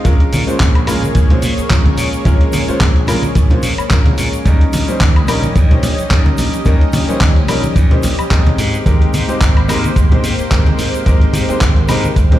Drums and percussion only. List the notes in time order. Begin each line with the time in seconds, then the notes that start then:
0.05 kick, closed hi-hat, shaker
0.20 closed hi-hat
0.33 open hi-hat, high conga, shaker
0.48 closed hi-hat, shaker
0.60 kick, clap, closed hi-hat, shaker
0.75 closed hi-hat, high woodblock
0.87 open hi-hat, high woodblock, shaker
1.03 closed hi-hat, high conga, shaker
1.15 kick, closed hi-hat, shaker
1.30 closed hi-hat, low conga
1.42 open hi-hat, shaker
1.58 closed hi-hat, shaker
1.70 kick, clap, closed hi-hat, shaker
1.86 closed hi-hat, high conga
1.98 open hi-hat, shaker
2.13 closed hi-hat, shaker
2.25 kick, closed hi-hat, shaker
2.41 closed hi-hat
2.53 open hi-hat, high conga, shaker
2.68 closed hi-hat, shaker
2.80 kick, clap, closed hi-hat, shaker
2.96 closed hi-hat
3.07 open hi-hat, low conga, high woodblock, shaker
3.23 closed hi-hat, high conga, shaker
3.35 kick, closed hi-hat, shaker
3.50 closed hi-hat, low conga
3.63 open hi-hat, shaker
3.78 closed hi-hat, high woodblock, shaker
3.90 kick, clap, closed hi-hat, shaker
4.06 closed hi-hat, high conga, low conga
4.18 open hi-hat, shaker
4.33 closed hi-hat, shaker
4.46 kick, closed hi-hat, shaker
4.61 closed hi-hat
4.73 open hi-hat, high conga, shaker
4.88 closed hi-hat, shaker
5.00 kick, clap, closed hi-hat, shaker
5.16 closed hi-hat, high woodblock
5.28 open hi-hat, high woodblock, shaker
5.43 closed hi-hat, high conga, shaker
5.56 kick, closed hi-hat, shaker
5.71 closed hi-hat, low conga
5.83 open hi-hat, shaker
5.98 closed hi-hat, shaker
6.11 kick, clap, closed hi-hat, shaker
6.26 closed hi-hat, high conga
6.38 open hi-hat, shaker
6.54 closed hi-hat, shaker
6.65 kick, closed hi-hat, shaker
6.81 closed hi-hat
6.93 open hi-hat, high conga, shaker
7.09 closed hi-hat, shaker
7.21 kick, clap, closed hi-hat, shaker
7.36 closed hi-hat
7.48 open hi-hat, low conga, high woodblock, shaker
7.63 closed hi-hat, high conga, shaker
7.76 kick, closed hi-hat, shaker
7.91 closed hi-hat, low conga
8.03 open hi-hat, shaker
8.19 closed hi-hat, high woodblock, shaker
8.31 kick, clap, closed hi-hat, shaker
8.46 closed hi-hat, high conga, low conga
8.58 open hi-hat, shaker
8.74 closed hi-hat, shaker
8.86 kick, closed hi-hat, shaker
9.02 closed hi-hat
9.14 open hi-hat, high conga, shaker
9.29 closed hi-hat, shaker
9.41 kick, clap, closed hi-hat, shaker
9.57 closed hi-hat, high woodblock
9.69 open hi-hat, high woodblock, shaker
9.84 closed hi-hat, high conga, shaker
9.96 kick, closed hi-hat, shaker
10.12 closed hi-hat, low conga
10.24 open hi-hat, shaker
10.39 closed hi-hat, shaker
10.51 kick, clap, closed hi-hat, shaker
10.66 closed hi-hat, high conga
10.79 open hi-hat, shaker
10.94 closed hi-hat, shaker
11.06 kick, closed hi-hat, shaker
11.21 closed hi-hat
11.33 open hi-hat, high conga, shaker
11.49 closed hi-hat, shaker
11.61 kick, clap, closed hi-hat, shaker
11.76 closed hi-hat
11.89 open hi-hat, low conga, high woodblock, shaker
12.04 closed hi-hat, high conga, shaker
12.16 kick, closed hi-hat, shaker
12.32 closed hi-hat, low conga